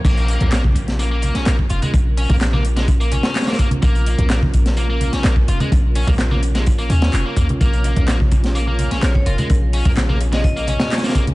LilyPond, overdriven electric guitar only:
\new Staff \with { instrumentName = "Overdriven electric guitar" } { \time 4/4 \key bes \minor \tempo 4 = 127 bes4 bes16 r8. bes16 bes8 des'16 bes16 r16 f'16 aes16 | r8 des'16 bes16 r16 bes16 r16 aes16 r16 bes16 des'8. bes16 bes16 r16 | bes4 bes16 r8. bes16 bes8 des'16 bes16 r16 f'16 aes16 | r8 des'16 bes16 r16 bes16 r16 aes16 r16 bes16 des'8. bes16 bes16 r16 |
bes4 bes16 r8. bes16 bes8 des'16 bes16 r16 f'16 aes16 | r8 des'16 bes16 r16 bes16 r16 aes16 r16 bes16 des'8. bes16 bes16 r16 | }